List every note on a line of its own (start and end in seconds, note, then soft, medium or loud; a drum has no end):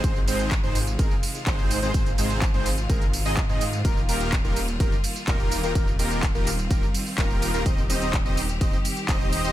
0.00 0.25 G#1 loud
0.00 3.81 C3 medium
0.00 3.81 D#3 medium
0.00 3.81 G#3 medium
0.00 7.62 F4 medium
0.00 0.19 C5 medium
0.00 kick loud
0.00 closed hi-hat medium
0.04 0.19 G#3 medium
0.04 0.19 C4 medium
0.04 0.19 D#4 medium
0.04 0.19 G#4 medium
0.04 0.19 C5 medium
0.04 tambourine soft
0.16 tambourine soft
0.28 0.61 G#1 loud
0.28 0.52 G#3 medium
0.28 0.52 C4 medium
0.28 0.52 D#4 medium
0.28 0.52 G#4 medium
0.28 0.52 C5 medium
0.28 open hi-hat loud
0.28 ride medium
0.28 tambourine medium
0.39 closed hi-hat medium
0.39 tambourine soft
0.51 kick loud
0.51 clap loud
0.51 closed hi-hat medium
0.51 tambourine soft
0.63 0.97 G#1 loud
0.63 0.79 G#3 medium
0.63 0.79 C4 medium
0.63 0.79 D#4 medium
0.63 0.79 G#4 medium
0.63 0.78 C5 loud
0.63 0.79 C5 loud
0.63 tambourine soft
0.75 open hi-hat loud
0.75 ride medium
0.75 tambourine medium
0.87 closed hi-hat medium
0.87 tambourine soft
0.99 1.12 G#1 loud
0.99 1.14 G#3 medium
0.99 1.14 C4 medium
0.99 1.14 D#4 medium
0.99 1.14 G#4 medium
0.99 1.14 A#4 medium
0.99 kick loud
0.99 closed hi-hat medium
0.99 tambourine soft
1.11 tambourine soft
1.23 open hi-hat loud
1.23 ride medium
1.23 tambourine medium
1.35 closed hi-hat medium
1.35 tambourine soft
1.47 1.80 G#1 loud
1.47 1.80 G#3 medium
1.47 1.80 C4 medium
1.47 1.80 D#4 medium
1.47 1.80 G#4 medium
1.47 1.80 C5 loud
1.47 kick loud
1.47 clap loud
1.47 closed hi-hat medium
1.47 tambourine soft
1.59 tambourine soft
1.71 open hi-hat loud
1.71 ride medium
1.71 tambourine medium
1.82 1.92 G#1 medium
1.82 1.92 G#3 loud
1.82 1.92 C4 loud
1.82 1.92 D#4 medium
1.82 1.92 G#4 medium
1.82 1.91 C5 loud
1.82 1.92 C5 loud
1.82 closed hi-hat medium
1.82 tambourine soft
1.94 2.16 G#1 loud
1.94 2.09 D#4 medium
1.94 2.09 G#4 medium
1.94 2.09 C5 loud
1.94 2.09 C5 medium
1.94 kick loud
1.94 closed hi-hat medium
1.94 tambourine soft
2.06 closed hi-hat soft
2.06 tambourine soft
2.18 2.52 G#1 loud
2.18 2.42 G#3 medium
2.18 2.42 C4 medium
2.18 2.42 D#4 medium
2.18 2.42 G#4 medium
2.18 2.42 C5 medium
2.18 open hi-hat loud
2.18 ride medium
2.18 tambourine medium
2.30 closed hi-hat soft
2.30 tambourine soft
2.42 kick loud
2.42 clap loud
2.42 closed hi-hat medium
2.42 tambourine soft
2.54 2.87 G#1 loud
2.54 2.69 G#3 medium
2.54 2.69 C4 medium
2.54 2.69 D#4 medium
2.54 2.69 G#4 medium
2.54 2.69 C5 loud
2.54 tambourine soft
2.66 clap soft
2.66 open hi-hat loud
2.66 ride medium
2.66 tambourine medium
2.78 closed hi-hat soft
2.78 tambourine soft
2.90 3.23 G#1 loud
2.90 3.05 G#3 medium
2.90 3.05 C4 medium
2.90 3.05 D#4 medium
2.90 3.05 G#4 medium
2.90 3.05 A#4 medium
2.90 kick loud
2.90 closed hi-hat medium
2.90 tambourine soft
3.02 closed hi-hat soft
3.02 tambourine soft
3.13 open hi-hat loud
3.13 ride medium
3.13 tambourine medium
3.25 3.47 G#1 loud
3.25 3.40 G#3 medium
3.25 3.40 C4 medium
3.25 3.40 D#4 medium
3.25 3.40 G#4 medium
3.25 3.40 D#5 loud
3.25 open hi-hat medium
3.25 tambourine soft
3.37 kick loud
3.37 clap loud
3.37 closed hi-hat medium
3.37 tambourine soft
3.49 3.83 G#2 loud
3.49 3.64 G#3 medium
3.49 3.64 C4 medium
3.49 3.64 D#4 medium
3.49 3.64 G#4 medium
3.49 3.64 D#5 medium
3.49 tambourine soft
3.61 open hi-hat loud
3.61 ride medium
3.61 tambourine medium
3.73 closed hi-hat medium
3.73 tambourine soft
3.85 4.06 D#1 loud
3.85 9.52 D#3 medium
3.85 9.52 G3 medium
3.85 4.00 A#3 medium
3.85 5.74 A#3 medium
3.85 4.00 D#4 medium
3.85 4.00 F4 medium
3.85 4.00 G4 medium
3.85 4.00 A#4 medium
3.85 kick loud
3.85 closed hi-hat medium
3.85 tambourine soft
3.97 tambourine soft
4.09 4.42 D#1 loud
4.09 4.33 A#3 medium
4.09 4.33 D#4 medium
4.09 4.33 F4 medium
4.09 4.33 G4 medium
4.09 4.33 A#4 medium
4.09 open hi-hat loud
4.09 ride medium
4.09 tambourine medium
4.21 closed hi-hat medium
4.21 tambourine soft
4.33 kick loud
4.33 clap loud
4.33 closed hi-hat medium
4.33 tambourine soft
4.44 4.78 D#1 loud
4.44 4.59 A#3 medium
4.44 4.59 D#4 medium
4.44 4.59 F4 medium
4.44 4.59 G4 medium
4.44 4.59 A#4 loud
4.44 tambourine soft
4.56 open hi-hat loud
4.56 ride medium
4.56 tambourine medium
4.68 closed hi-hat medium
4.68 tambourine soft
4.80 4.93 D#1 loud
4.80 4.95 A#3 medium
4.80 4.95 D#4 medium
4.80 4.95 F4 medium
4.80 4.95 G4 medium
4.80 4.95 A#4 medium
4.80 kick loud
4.80 closed hi-hat medium
4.80 tambourine soft
4.92 tambourine soft
5.04 open hi-hat loud
5.04 ride medium
5.04 tambourine medium
5.16 closed hi-hat medium
5.16 tambourine soft
5.28 5.61 D#1 loud
5.28 5.61 A#3 medium
5.28 5.61 D#4 medium
5.28 5.61 F4 medium
5.28 5.61 G4 medium
5.28 5.61 A#4 loud
5.28 kick loud
5.28 clap loud
5.28 closed hi-hat medium
5.28 tambourine soft
5.40 tambourine soft
5.52 open hi-hat loud
5.52 ride medium
5.52 tambourine medium
5.63 5.73 D#1 loud
5.63 5.72 A#3 loud
5.63 5.72 D#4 medium
5.63 5.72 F4 loud
5.63 5.72 G4 loud
5.63 5.72 A#4 loud
5.63 5.73 A#4 loud
5.63 closed hi-hat medium
5.63 tambourine soft
5.75 5.97 D#1 loud
5.75 5.90 A#3 medium
5.75 9.52 C4 medium
5.75 5.90 D#4 medium
5.75 5.90 F4 medium
5.75 5.90 G4 medium
5.75 5.90 A#4 medium
5.75 kick loud
5.75 closed hi-hat medium
5.75 tambourine soft
5.88 tambourine soft
5.99 6.32 D#1 loud
5.99 6.23 A#3 medium
5.99 6.23 D#4 medium
5.99 6.23 F4 medium
5.99 6.23 G4 medium
5.99 6.23 A#4 medium
5.99 open hi-hat loud
5.99 ride medium
5.99 tambourine medium
6.11 closed hi-hat medium
6.11 tambourine soft
6.23 kick loud
6.23 clap loud
6.23 closed hi-hat medium
6.23 tambourine soft
6.35 6.68 D#1 loud
6.35 6.50 A#3 medium
6.35 6.50 D#4 medium
6.35 6.50 F4 medium
6.35 6.50 G4 medium
6.35 6.50 A#4 loud
6.35 tambourine soft
6.47 clap soft
6.47 open hi-hat loud
6.47 ride medium
6.47 tambourine medium
6.59 closed hi-hat medium
6.59 tambourine soft
6.71 6.83 D#1 medium
6.71 6.86 A#3 medium
6.71 6.86 D#4 medium
6.71 6.86 F4 medium
6.71 6.86 G4 medium
6.71 6.86 A#4 medium
6.71 kick loud
6.71 closed hi-hat medium
6.71 tambourine soft
6.83 tambourine soft
6.94 open hi-hat loud
6.94 ride medium
6.94 tambourine medium
7.06 open hi-hat medium
7.06 tambourine soft
7.18 7.52 D#1 loud
7.18 7.51 A#3 medium
7.18 7.51 D#4 medium
7.18 7.51 F4 medium
7.18 7.51 G4 medium
7.18 7.51 A#4 loud
7.18 kick loud
7.18 clap loud
7.18 closed hi-hat medium
7.18 tambourine soft
7.31 tambourine soft
7.42 open hi-hat loud
7.42 ride medium
7.42 tambourine medium
7.54 7.63 D#1 loud
7.54 7.63 A#3 loud
7.54 7.63 D#4 medium
7.54 7.63 F4 loud
7.54 7.63 G4 medium
7.54 7.63 A#4 loud
7.54 closed hi-hat medium
7.54 tambourine soft
7.66 7.87 D#1 loud
7.66 7.81 C4 medium
7.66 7.81 D#4 medium
7.66 7.81 G4 medium
7.66 9.52 G4 medium
7.66 7.81 C5 medium
7.66 7.81 D#5 medium
7.66 7.81 D#5 loud
7.66 kick loud
7.66 closed hi-hat medium
7.66 tambourine soft
7.78 tambourine soft
7.90 8.23 D#1 loud
7.90 8.14 C4 medium
7.90 8.14 D#4 medium
7.90 8.14 G4 medium
7.90 8.14 C5 medium
7.90 8.14 D#5 medium
7.90 open hi-hat loud
7.90 ride medium
7.90 tambourine medium
8.02 closed hi-hat medium
8.02 tambourine soft
8.13 kick loud
8.13 clap loud
8.13 closed hi-hat medium
8.13 tambourine soft
8.25 8.59 D#1 loud
8.25 8.40 C4 medium
8.25 8.40 D#4 medium
8.25 8.40 G4 medium
8.25 8.40 C5 medium
8.25 8.40 D#5 loud
8.25 tambourine soft
8.37 open hi-hat loud
8.37 ride medium
8.37 tambourine medium
8.49 closed hi-hat medium
8.49 tambourine soft
8.61 8.74 D#1 loud
8.61 8.76 C4 medium
8.61 8.76 D#4 medium
8.61 8.76 G4 medium
8.61 8.76 C5 medium
8.61 8.76 D#5 medium
8.61 kick loud
8.61 closed hi-hat medium
8.61 tambourine soft
8.73 tambourine soft
8.85 open hi-hat loud
8.85 ride medium
8.85 tambourine medium
8.97 closed hi-hat medium
8.97 tambourine soft
9.09 9.42 D#1 loud
9.09 9.42 C4 medium
9.09 9.42 D#4 medium
9.09 9.42 G4 medium
9.09 9.42 C5 medium
9.09 9.42 D#5 loud
9.09 kick loud
9.09 clap loud
9.09 closed hi-hat medium
9.09 tambourine soft
9.21 tambourine soft
9.32 open hi-hat loud
9.32 ride medium
9.32 tambourine medium
9.44 9.52 D#1 loud
9.44 9.52 C4 loud
9.44 9.52 D#4 medium
9.44 9.52 G4 medium
9.44 9.52 C5 medium
9.44 9.52 D#5 loud
9.44 closed hi-hat medium
9.44 tambourine soft